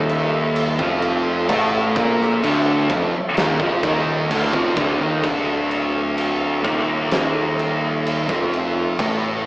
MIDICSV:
0, 0, Header, 1, 5, 480
1, 0, Start_track
1, 0, Tempo, 936037
1, 766, Time_signature, 4, 2, 24, 8
1, 4852, End_track
2, 0, Start_track
2, 0, Title_t, "Synth drone"
2, 0, Program_c, 0, 95
2, 0, Note_on_c, 0, 69, 78
2, 0, Note_on_c, 0, 76, 95
2, 2667, Note_off_c, 0, 76, 0
2, 2670, Note_off_c, 0, 69, 0
2, 2676, Note_on_c, 0, 69, 75
2, 2679, Note_on_c, 0, 76, 96
2, 4852, Note_off_c, 0, 69, 0
2, 4852, Note_off_c, 0, 76, 0
2, 4852, End_track
3, 0, Start_track
3, 0, Title_t, "Distorted electric guitar"
3, 0, Program_c, 1, 30
3, 0, Note_on_c, 1, 39, 84
3, 0, Note_on_c, 1, 51, 105
3, 402, Note_off_c, 1, 39, 0
3, 403, Note_off_c, 1, 51, 0
3, 406, Note_on_c, 1, 41, 90
3, 409, Note_on_c, 1, 53, 111
3, 759, Note_off_c, 1, 41, 0
3, 760, Note_off_c, 1, 53, 0
3, 763, Note_on_c, 1, 45, 91
3, 770, Note_on_c, 1, 57, 108
3, 997, Note_off_c, 1, 45, 0
3, 1001, Note_off_c, 1, 57, 0
3, 1012, Note_on_c, 1, 46, 97
3, 1012, Note_on_c, 1, 58, 101
3, 1242, Note_off_c, 1, 46, 0
3, 1242, Note_off_c, 1, 58, 0
3, 1252, Note_on_c, 1, 38, 97
3, 1255, Note_on_c, 1, 50, 111
3, 1482, Note_off_c, 1, 38, 0
3, 1483, Note_off_c, 1, 50, 0
3, 1495, Note_on_c, 1, 41, 97
3, 1495, Note_on_c, 1, 53, 107
3, 1604, Note_off_c, 1, 41, 0
3, 1604, Note_off_c, 1, 53, 0
3, 1731, Note_on_c, 1, 39, 94
3, 1733, Note_on_c, 1, 51, 113
3, 1842, Note_off_c, 1, 39, 0
3, 1843, Note_off_c, 1, 51, 0
3, 1851, Note_on_c, 1, 41, 101
3, 1857, Note_on_c, 1, 53, 103
3, 1962, Note_off_c, 1, 41, 0
3, 1965, Note_off_c, 1, 53, 0
3, 1972, Note_on_c, 1, 39, 88
3, 1975, Note_on_c, 1, 51, 100
3, 2201, Note_off_c, 1, 39, 0
3, 2203, Note_on_c, 1, 38, 92
3, 2204, Note_off_c, 1, 51, 0
3, 2210, Note_on_c, 1, 50, 95
3, 2318, Note_off_c, 1, 38, 0
3, 2321, Note_off_c, 1, 50, 0
3, 2333, Note_on_c, 1, 41, 86
3, 2336, Note_on_c, 1, 53, 101
3, 2443, Note_off_c, 1, 41, 0
3, 2444, Note_off_c, 1, 53, 0
3, 2446, Note_on_c, 1, 38, 92
3, 2448, Note_on_c, 1, 50, 110
3, 2559, Note_off_c, 1, 38, 0
3, 2561, Note_off_c, 1, 50, 0
3, 2568, Note_on_c, 1, 39, 88
3, 2571, Note_on_c, 1, 51, 100
3, 2680, Note_off_c, 1, 39, 0
3, 2682, Note_off_c, 1, 51, 0
3, 2687, Note_on_c, 1, 38, 89
3, 2691, Note_on_c, 1, 50, 99
3, 3403, Note_off_c, 1, 38, 0
3, 3403, Note_on_c, 1, 39, 87
3, 3407, Note_off_c, 1, 50, 0
3, 3407, Note_on_c, 1, 51, 92
3, 4238, Note_off_c, 1, 39, 0
3, 4240, Note_off_c, 1, 51, 0
3, 4247, Note_on_c, 1, 41, 90
3, 4254, Note_on_c, 1, 53, 96
3, 4600, Note_off_c, 1, 41, 0
3, 4603, Note_off_c, 1, 53, 0
3, 4615, Note_on_c, 1, 45, 97
3, 4619, Note_on_c, 1, 57, 101
3, 4844, Note_off_c, 1, 45, 0
3, 4846, Note_off_c, 1, 57, 0
3, 4852, End_track
4, 0, Start_track
4, 0, Title_t, "Picked electric bass"
4, 0, Program_c, 2, 34
4, 0, Note_on_c, 2, 27, 99
4, 387, Note_off_c, 2, 27, 0
4, 404, Note_on_c, 2, 29, 104
4, 745, Note_off_c, 2, 29, 0
4, 764, Note_on_c, 2, 33, 110
4, 988, Note_off_c, 2, 33, 0
4, 1007, Note_on_c, 2, 34, 99
4, 1230, Note_off_c, 2, 34, 0
4, 1243, Note_on_c, 2, 26, 92
4, 1468, Note_off_c, 2, 26, 0
4, 1487, Note_on_c, 2, 29, 98
4, 1599, Note_off_c, 2, 29, 0
4, 1728, Note_on_c, 2, 27, 93
4, 1839, Note_off_c, 2, 27, 0
4, 1845, Note_on_c, 2, 29, 101
4, 1957, Note_off_c, 2, 29, 0
4, 1964, Note_on_c, 2, 27, 81
4, 2189, Note_off_c, 2, 27, 0
4, 2200, Note_on_c, 2, 26, 94
4, 2315, Note_off_c, 2, 26, 0
4, 2322, Note_on_c, 2, 29, 95
4, 2436, Note_off_c, 2, 29, 0
4, 2447, Note_on_c, 2, 26, 102
4, 2554, Note_off_c, 2, 26, 0
4, 2557, Note_on_c, 2, 27, 98
4, 2674, Note_off_c, 2, 27, 0
4, 2683, Note_on_c, 2, 26, 105
4, 3385, Note_off_c, 2, 26, 0
4, 3407, Note_on_c, 2, 27, 95
4, 4227, Note_off_c, 2, 27, 0
4, 4248, Note_on_c, 2, 29, 96
4, 4587, Note_off_c, 2, 29, 0
4, 4611, Note_on_c, 2, 33, 109
4, 4832, Note_off_c, 2, 33, 0
4, 4852, End_track
5, 0, Start_track
5, 0, Title_t, "Drums"
5, 48, Note_on_c, 9, 49, 61
5, 99, Note_off_c, 9, 49, 0
5, 286, Note_on_c, 9, 49, 84
5, 337, Note_off_c, 9, 49, 0
5, 405, Note_on_c, 9, 36, 112
5, 456, Note_off_c, 9, 36, 0
5, 523, Note_on_c, 9, 49, 65
5, 574, Note_off_c, 9, 49, 0
5, 765, Note_on_c, 9, 36, 108
5, 766, Note_on_c, 9, 49, 90
5, 816, Note_off_c, 9, 36, 0
5, 817, Note_off_c, 9, 49, 0
5, 1004, Note_on_c, 9, 49, 66
5, 1005, Note_on_c, 9, 36, 114
5, 1055, Note_off_c, 9, 49, 0
5, 1056, Note_off_c, 9, 36, 0
5, 1134, Note_on_c, 9, 38, 37
5, 1185, Note_off_c, 9, 38, 0
5, 1249, Note_on_c, 9, 49, 85
5, 1300, Note_off_c, 9, 49, 0
5, 1486, Note_on_c, 9, 36, 99
5, 1487, Note_on_c, 9, 49, 64
5, 1538, Note_off_c, 9, 36, 0
5, 1539, Note_off_c, 9, 49, 0
5, 1727, Note_on_c, 9, 49, 85
5, 1733, Note_on_c, 9, 38, 106
5, 1779, Note_off_c, 9, 49, 0
5, 1784, Note_off_c, 9, 38, 0
5, 1845, Note_on_c, 9, 36, 114
5, 1896, Note_off_c, 9, 36, 0
5, 1965, Note_on_c, 9, 36, 109
5, 1968, Note_on_c, 9, 49, 64
5, 2017, Note_off_c, 9, 36, 0
5, 2019, Note_off_c, 9, 49, 0
5, 2208, Note_on_c, 9, 49, 89
5, 2259, Note_off_c, 9, 49, 0
5, 2324, Note_on_c, 9, 36, 108
5, 2376, Note_off_c, 9, 36, 0
5, 2445, Note_on_c, 9, 36, 117
5, 2445, Note_on_c, 9, 49, 64
5, 2496, Note_off_c, 9, 36, 0
5, 2496, Note_off_c, 9, 49, 0
5, 2684, Note_on_c, 9, 49, 77
5, 2685, Note_on_c, 9, 36, 104
5, 2735, Note_off_c, 9, 49, 0
5, 2736, Note_off_c, 9, 36, 0
5, 2928, Note_on_c, 9, 49, 52
5, 2979, Note_off_c, 9, 49, 0
5, 3168, Note_on_c, 9, 49, 77
5, 3219, Note_off_c, 9, 49, 0
5, 3408, Note_on_c, 9, 36, 102
5, 3412, Note_on_c, 9, 49, 53
5, 3459, Note_off_c, 9, 36, 0
5, 3463, Note_off_c, 9, 49, 0
5, 3647, Note_on_c, 9, 49, 72
5, 3653, Note_on_c, 9, 38, 109
5, 3699, Note_off_c, 9, 49, 0
5, 3704, Note_off_c, 9, 38, 0
5, 3893, Note_on_c, 9, 49, 55
5, 3944, Note_off_c, 9, 49, 0
5, 4135, Note_on_c, 9, 49, 74
5, 4187, Note_off_c, 9, 49, 0
5, 4252, Note_on_c, 9, 36, 108
5, 4265, Note_on_c, 9, 38, 34
5, 4303, Note_off_c, 9, 36, 0
5, 4316, Note_off_c, 9, 38, 0
5, 4376, Note_on_c, 9, 49, 60
5, 4427, Note_off_c, 9, 49, 0
5, 4611, Note_on_c, 9, 36, 103
5, 4612, Note_on_c, 9, 49, 86
5, 4662, Note_off_c, 9, 36, 0
5, 4663, Note_off_c, 9, 49, 0
5, 4852, End_track
0, 0, End_of_file